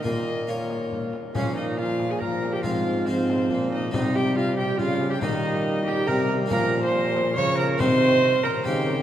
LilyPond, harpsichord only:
<<
  \new Staff \with { instrumentName = "Harpsichord" } { \time 3/4 \key bes \dorian \tempo 4 = 140 <f' bes'>4 <f' bes'>2 | <des' f'>2. | <c' f'>4 <c' f'>2 | <c' ees'>2. |
<bes ees'>2. | <bes des' f'>2. | <c' ees'>2 <c' ees'>4 | }
  \new Staff \with { instrumentName = "Harpsichord" } { \clef bass \time 3/4 \key bes \dorian bes,2~ bes,8 r8 | bes,2. | aes,2 bes,4 | c2 des4 |
ees2 c4 | bes,2 des4 | c4. r8 des4 | }
>>